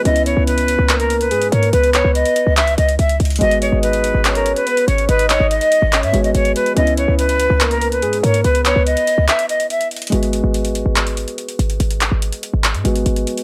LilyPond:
<<
  \new Staff \with { instrumentName = "Flute" } { \time 4/4 \key gis \minor \tempo 4 = 143 dis''8 cis''8 b'4~ b'16 ais'8 b'8. cis''8 | b'8 cis''8 dis''4 e''8 dis''8 e''8 r8 | dis''8 cis''8 b'4~ b'16 ais'8 b'8. cis''8 | b'8 cis''8 dis''4~ dis''16 e''8 dis''16 cis''8 b'8 |
dis''8 cis''8 b'4~ b'16 ais'8 b'8. cis''8 | b'8 cis''8 dis''4 e''8 dis''8 e''8 r8 | r1 | r1 | }
  \new Staff \with { instrumentName = "Soft synth lead" } { \time 4/4 \key gis \minor r8 b'4. ais'4 gis'8 ais'8 | b'2 r2 | r8 dis''4. cis''4 b'8 cis''8 | dis''2 cis''4 r4 |
r8 b'4. ais'4 gis'8 ais'8 | b'2 r2 | r1 | r1 | }
  \new Staff \with { instrumentName = "Grand piano" } { \time 4/4 \key gis \minor <b cis' e'>1~ | <b cis' e'>1 | <gis b fis'>1~ | <gis b fis'>2~ <gis b fis'>8 <gis b fis'>4. |
<b cis' e'>1~ | <b cis' e'>1 | <gis b fis'>1~ | <gis b fis'>2~ <gis b fis'>8 <gis b fis'>4. | }
  \new Staff \with { instrumentName = "808-style bass" } { \clef bass \time 4/4 \key gis \minor cis,8. cis,4 cis,4~ cis,16 gis,8 gis,8 | cis,8. cis,8 r8 cis,8. cis,8 cis,8 cis,8 | gis,,8. gis,,4 gis,,4 r8. gis,,8 | gis,,8. gis,,8 r8 gis,,8 gis,16 gis,,8 gis,,8 r8 |
cis,8. cis,4 cis,4~ cis,16 gis,8 gis,8 | cis,8. cis,8 r8 cis,16 r2 | gis,,8. gis,,4 gis,,4 r8. gis,,8 | gis,,8. gis,,8 r8 gis,,8 gis,16 gis,,8 gis,,8 r8 | }
  \new DrumStaff \with { instrumentName = "Drums" } \drummode { \time 4/4 hh16 hh16 hh8 hh16 hh16 hh8 <hc hh>16 hh16 hh16 hh16 hh16 hh16 hh16 hh16 | hh16 hh16 <hc hh>8 hh16 hh16 hh8 <hc hh>16 hh16 hh16 hh16 hh16 hh16 hh32 hh32 hh32 hh32 | hh16 hh16 hh8 hh16 hh16 hh8 <hc hh>16 hh16 hh16 hh16 hh16 hh16 hh16 hh16 | hh16 hh16 <hc hh>8 hh16 hh16 hh8 <hc hh>16 hh16 hh16 hh16 hh16 hh16 hh16 hh16 |
hh16 hh16 hh8 hh16 hh16 hh8 <hc hh>16 hh16 hh16 hh16 hh16 hh16 hh16 hh16 | hh16 hh16 <hc hh>8 hh16 hh16 hh8 <hc hh>16 hh16 hh16 hh16 hh16 hh16 hh32 hh32 hh32 hh32 | hh16 hh16 hh8 hh16 hh16 hh8 <hc hh>16 hh16 hh16 hh16 hh16 hh16 hh16 hh16 | hh16 hh16 <hc hh>8 hh16 hh16 hh8 <hc hh>16 hh16 hh16 hh16 hh16 hh16 hh16 hh16 | }
>>